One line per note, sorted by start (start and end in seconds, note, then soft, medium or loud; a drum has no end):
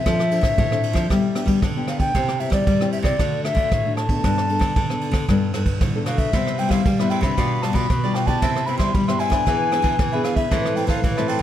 0.00 1.45 E5 medium
0.06 0.56 F3 medium
0.06 0.39 F3 loud
0.06 0.21 C4 medium
0.06 0.21 D4 medium
0.06 0.22 A4 medium
0.06 kick medium
0.06 cross-stick medium
0.06 ride soft
0.20 cross-stick medium
0.31 0.66 C4 soft
0.31 0.67 D4 medium
0.31 0.67 A4 medium
0.31 ride soft
0.41 0.54 A2 medium
0.41 kick medium
0.41 cross-stick medium
0.41 ride soft
0.58 0.92 A2 medium
0.58 1.08 F3 soft
0.58 kick medium
0.58 ride soft
0.71 1.06 C4 medium
0.71 1.06 D4 medium
0.71 1.07 A4 medium
0.71 cross-stick medium
0.83 ride soft
0.93 1.06 F3 medium
0.93 kick medium
0.93 cross-stick medium
0.93 ride soft
1.10 1.60 G3 medium
1.10 1.44 G3 medium
1.10 1.26 B3 medium
1.10 1.26 D4 medium
1.10 1.26 G4 medium
1.10 kick medium
1.10 cross-stick medium
1.10 ride soft
1.35 1.71 B3 medium
1.35 1.71 D4 medium
1.35 1.71 G4 medium
1.35 cross-stick medium
1.35 ride soft
1.46 1.58 G3 medium
1.46 kick medium
1.46 ride soft
1.62 2.07 D3 medium
1.62 2.12 D3 medium
1.62 kick medium
1.62 cross-stick medium
1.62 ride soft
1.76 2.11 B3 medium
1.76 2.11 D4 medium
1.76 2.11 G4 medium
1.87 2.00 F5 medium
1.87 cross-stick medium
1.87 ride soft
2.00 2.41 G5 medium
2.00 kick medium
2.00 ride soft
2.15 2.48 C3 loud
2.15 2.65 C3 medium
2.15 2.31 C4 medium
2.15 2.31 E4 medium
2.15 2.31 G4 medium
2.15 kick medium
2.15 cross-stick medium
2.15 ride medium
2.28 cross-stick medium
2.40 2.65 C4 soft
2.40 2.65 E4 soft
2.40 2.66 G4 medium
2.40 2.52 E5 medium
2.40 ride soft
2.50 2.63 G3 medium
2.50 2.90 D5 medium
2.50 kick medium
2.50 cross-stick medium
2.50 ride soft
2.67 3.17 G2 soft
2.67 3.01 G3 medium
2.67 kick medium
2.67 ride soft
2.81 3.16 C4 medium
2.81 3.16 E4 medium
2.81 3.16 G4 medium
2.81 cross-stick medium
2.92 2.98 E5 medium
2.92 ride soft
3.02 3.15 C3 medium
3.02 3.42 D5 medium
3.02 kick medium
3.02 cross-stick medium
3.02 ride soft
3.19 3.69 D3 medium
3.19 3.53 D3 medium
3.19 3.41 A3 medium
3.19 3.42 D4 medium
3.19 3.42 F#4 medium
3.19 kick medium
3.19 cross-stick medium
3.19 ride soft
3.44 3.80 A3 medium
3.44 3.81 D4 soft
3.44 3.81 F#4 medium
3.44 3.93 E5 loud
3.44 cross-stick medium
3.44 ride soft
3.55 3.67 D3 medium
3.55 kick medium
3.55 ride soft
3.72 4.21 A2 medium
3.72 4.16 A2 medium
3.72 kick medium
3.72 cross-stick medium
3.72 ride soft
3.85 4.07 A3 medium
3.85 4.07 D4 medium
3.85 4.08 F#4 medium
3.97 5.50 A5 loud
3.97 cross-stick medium
3.97 ride soft
4.09 4.45 B3 medium
4.09 4.45 D4 medium
4.09 4.45 A4 medium
4.09 kick medium
4.09 ride soft
4.24 4.57 G2 medium
4.24 4.74 G3 medium
4.24 kick medium
4.24 cross-stick medium
4.24 ride soft
4.38 cross-stick medium
4.49 4.85 B3 medium
4.49 4.85 D4 medium
4.49 4.85 A4 medium
4.49 ride soft
4.59 4.72 D3 medium
4.59 kick medium
4.59 cross-stick medium
4.59 ride soft
4.76 5.10 D3 medium
4.76 5.26 D3 medium
4.76 kick medium
4.76 ride soft
4.90 5.25 B3 medium
4.90 5.25 D4 medium
4.90 5.26 A4 medium
4.90 cross-stick medium
5.01 ride soft
5.11 5.24 D3 medium
5.11 kick medium
5.11 cross-stick medium
5.11 ride soft
5.29 5.51 G2 medium
5.29 5.79 G3 medium
5.29 5.51 B3 medium
5.29 5.51 D4 medium
5.29 5.51 A4 medium
5.29 kick medium
5.29 cross-stick medium
5.29 ride soft
5.54 5.78 G2 medium
5.54 5.89 B3 medium
5.54 5.90 D4 soft
5.54 5.90 A4 medium
5.54 cross-stick medium
5.54 ride soft
5.66 kick medium
5.66 ride soft
5.81 6.05 A2 medium
5.81 6.31 D3 medium
5.81 kick medium
5.81 cross-stick medium
5.81 ride soft
5.95 6.29 B3 medium
5.95 6.30 D4 medium
5.95 6.30 A4 medium
6.06 6.30 B2 medium
6.06 6.20 F5 medium
6.06 cross-stick medium
6.06 ride soft
6.18 6.60 E5 medium
6.18 kick medium
6.18 ride soft
6.33 6.67 C3 medium
6.33 6.83 C3 medium
6.33 6.56 G3 medium
6.33 6.56 B3 medium
6.33 6.57 E4 medium
6.33 6.56 E4 medium
6.33 6.58 B4 medium
6.33 6.57 C5 medium
6.33 6.58 E5 medium
6.33 kick medium
6.33 cross-stick medium
6.33 ride soft
6.47 cross-stick medium
6.58 6.84 G3 medium
6.58 6.84 B3 medium
6.58 6.70 E4 soft
6.58 6.84 E4 medium
6.58 6.70 B4 medium
6.58 6.70 C5 medium
6.58 6.70 E5 soft
6.58 6.72 G5 medium
6.58 ride soft
6.69 6.81 G3 medium
6.69 6.81 E4 medium
6.69 6.81 B4 medium
6.69 6.81 C5 medium
6.69 6.81 E5 medium
6.69 7.01 F5 medium
6.69 kick medium
6.69 cross-stick medium
6.69 ride medium
6.86 7.36 G2 medium
6.86 7.19 G3 medium
6.86 kick medium
6.86 ride soft
6.99 7.21 G3 medium
6.99 7.21 B3 medium
6.99 7.22 E4 medium
6.99 7.10 B4 soft
6.99 7.09 C5 soft
6.99 7.11 E5 medium
6.99 7.10 E5 soft
6.99 cross-stick medium
7.10 7.23 E4 medium
7.10 7.22 B4 medium
7.10 7.23 C5 medium
7.10 7.22 E5 medium
7.10 7.22 G5 medium
7.10 ride soft
7.21 7.34 C3 medium
7.21 7.59 G3 medium
7.21 7.59 D4 medium
7.21 7.59 F4 medium
7.21 7.36 B4 soft
7.21 7.36 C5 soft
7.21 7.36 E5 soft
7.21 7.64 B5 medium
7.21 kick medium
7.21 cross-stick medium
7.21 ride soft
7.37 7.71 B2 medium
7.37 7.88 B2 medium
7.37 7.61 F4 medium
7.37 7.62 G4 medium
7.37 7.63 B4 medium
7.37 7.63 D5 medium
7.37 kick medium
7.37 cross-stick medium
7.37 ride soft
7.62 7.88 G3 medium
7.62 7.88 D4 medium
7.62 7.74 F4 soft
7.62 7.88 F4 medium
7.62 7.74 G4 medium
7.62 7.75 B4 medium
7.62 7.75 D5 medium
7.62 7.76 A5 medium
7.62 cross-stick medium
7.62 ride soft
7.73 7.86 B2 medium
7.73 7.85 F4 medium
7.73 7.85 G4 medium
7.73 7.85 B4 medium
7.73 7.86 D5 medium
7.73 8.16 B5 loud
7.73 kick medium
7.73 ride soft
7.90 8.34 B2 medium
7.90 8.40 B2 medium
7.90 kick medium
7.90 cross-stick medium
7.90 ride soft
8.04 8.25 G3 medium
8.04 8.26 D4 medium
8.04 8.26 F4 medium
8.04 8.14 G4 medium
8.04 8.15 B4 medium
8.04 8.15 D5 medium
8.15 8.27 F4 medium
8.15 8.27 G4 medium
8.15 8.27 B4 medium
8.15 8.26 D5 medium
8.15 8.28 G5 medium
8.15 cross-stick medium
8.15 ride soft
8.26 8.63 B3 medium
8.26 8.64 E4 medium
8.26 8.41 G4 soft
8.26 8.64 G4 medium
8.26 8.40 B4 soft
8.26 8.40 D5 medium
8.26 8.68 A5 loud
8.26 kick medium
8.26 ride soft
8.42 8.76 C3 loud
8.42 8.92 C3 medium
8.42 8.66 E4 medium
8.42 8.67 B4 medium
8.42 8.66 C5 medium
8.42 8.67 E5 medium
8.42 kick medium
8.42 cross-stick medium
8.42 ride soft
8.56 cross-stick medium
8.66 9.03 B3 medium
8.66 8.78 E4 soft
8.66 9.03 E4 medium
8.66 9.03 G4 medium
8.66 8.79 B4 medium
8.66 8.78 C5 medium
8.66 8.79 E5 medium
8.66 8.78 B5 medium
8.66 ride soft
8.78 8.90 G3 medium
8.78 8.89 E4 medium
8.78 8.90 B4 medium
8.78 8.90 C5 medium
8.78 8.90 E5 medium
8.78 8.95 C6 medium
8.78 kick medium
8.78 cross-stick medium
8.78 ride soft
8.94 9.44 G2 medium
8.94 9.28 G3 medium
8.94 9.09 B5 medium
8.94 kick medium
8.94 ride soft
9.08 9.43 B3 medium
9.08 9.43 E4 medium
9.08 9.43 G4 medium
9.08 9.19 B4 soft
9.08 9.19 C5 soft
9.08 9.20 E5 soft
9.08 9.21 C6 loud
9.08 cross-stick medium
9.19 9.32 E4 medium
9.19 9.31 B4 medium
9.19 9.32 C5 medium
9.19 9.30 E5 medium
9.19 10.23 G#5 loud
9.19 ride soft
9.30 9.43 D3 medium
9.30 9.45 B4 soft
9.30 9.46 C5 soft
9.30 9.45 E5 soft
9.30 kick medium
9.30 cross-stick medium
9.30 ride soft
9.46 9.80 E3 medium
9.46 9.97 E3 medium
9.46 9.69 B3 medium
9.46 9.70 D4 medium
9.46 9.69 D4 medium
9.46 9.71 G#4 medium
9.46 9.69 G#4 medium
9.46 9.71 B4 medium
9.46 9.71 E5 medium
9.46 kick medium
9.46 cross-stick medium
9.46 ride soft
9.71 9.97 B3 medium
9.71 9.82 D4 soft
9.71 9.97 D4 medium
9.71 9.83 G#4 soft
9.71 9.97 G#4 medium
9.71 9.83 B4 medium
9.71 9.83 E5 medium
9.71 cross-stick medium
9.71 ride soft
9.82 9.95 E3 medium
9.82 9.94 D4 medium
9.82 9.94 G#4 medium
9.82 9.94 B4 medium
9.82 9.94 E5 medium
9.82 kick medium
9.82 ride soft
9.99 10.49 B2 medium
9.99 10.43 E3 medium
9.99 kick medium
9.99 cross-stick medium
9.99 ride soft
10.12 10.48 B3 medium
10.12 10.48 D4 medium
10.12 10.23 G#4 medium
10.12 10.48 G#4 medium
10.12 10.24 B4 medium
10.12 10.24 E5 medium
10.24 10.36 D4 soft
10.24 10.36 G#4 medium
10.24 10.36 B4 medium
10.24 10.35 E5 medium
10.24 10.37 F5 medium
10.24 cross-stick medium
10.24 ride soft
10.36 10.50 G#4 soft
10.36 10.50 B4 soft
10.36 10.77 E5 medium
10.36 10.49 E5 soft
10.36 kick medium
10.36 ride soft
10.51 11.01 A2 medium
10.51 10.85 E3 loud
10.51 10.73 E3 medium
10.51 10.74 A3 medium
10.51 10.74 C4 medium
10.51 10.74 E4 medium
10.51 10.74 A4 medium
10.51 10.76 B4 medium
10.51 10.75 C5 medium
10.51 10.76 A5 medium
10.51 kick medium
10.51 cross-stick medium
10.51 ride soft
10.65 cross-stick medium
10.76 11.01 E3 medium
10.76 11.02 A3 medium
10.76 11.02 C4 medium
10.76 11.02 E4 medium
10.76 10.87 A4 medium
10.76 11.02 A4 medium
10.76 10.88 B4 medium
10.76 10.88 C5 medium
10.76 10.88 G5 medium
10.76 10.88 A5 medium
10.76 ride soft
10.87 11.00 E3 medium
10.87 10.98 A4 medium
10.87 10.99 B4 medium
10.87 10.99 C5 medium
10.87 11.19 F5 medium
10.87 10.99 A5 medium
10.87 kick medium
10.87 cross-stick medium
10.87 ride soft
11.04 11.42 A2 medium
11.04 11.37 E3 medium
11.04 kick medium
11.04 ride medium
11.17 11.42 E3 medium
11.17 11.42 A3 medium
11.17 11.42 C4 medium
11.17 11.42 E4 medium
11.17 11.42 A4 medium
11.17 11.28 B4 soft
11.17 11.27 C5 soft
11.17 11.30 E5 medium
11.17 11.28 A5 soft
11.17 cross-stick medium
11.28 11.41 A4 medium
11.28 11.40 B4 medium
11.28 11.40 C5 medium
11.28 11.42 G5 medium
11.28 11.39 A5 medium
11.28 ride medium
11.39 11.42 E3 medium